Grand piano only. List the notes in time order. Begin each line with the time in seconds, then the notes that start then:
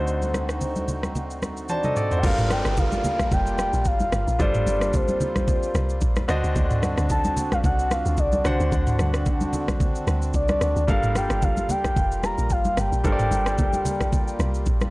Already playing: D3 A3 D#4 F#4 C5
1.70 F#4 C5 A5
1.84 A4 D#5
1.97 A4 D5
2.12 F#4 C5
2.22 G3 D4 F4 A4 A#4
4.39 G3 D4 F4 A4 C5
6.28 D3 D4 F#4 C5 D#5
8.44 D3 D4 F#4 C5 F#5
10.87 G3 D4 A4 A#4 F5
13.04 G3 D4 A4 A#4 C5
13.12 D5